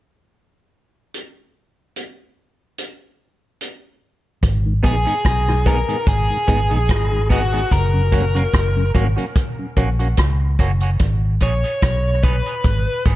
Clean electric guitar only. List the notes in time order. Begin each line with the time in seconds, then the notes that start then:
4.83 B3 D#4 G#4
5.06 B3 D#4 G#4
5.66 B3 D#4 G#4
5.89 B3 D#4 G#4
6.47 B3 D#4 G#4
6.70 B3 D#4 G#4
7.29 B3 D#4 G#4
7.53 B3 D#4 G#4
8.12 A#3 C#4 F#4
8.35 A#3 C#4 F#4
8.94 A#3 C#4 F#4
9.17 A#3 C#4 F#4
9.77 A#3 C#4 F#4
9.99 A#3 C#4 F#4
10.59 A#3 C#4 F#4
10.82 A#3 C#4 F#4
11.41 B3 D#4 G#4
11.64 B3 D#4 G#4
12.23 B3 D#4 G#4
12.47 B3 D#4 G#4
13.06 B3 D#4 G#4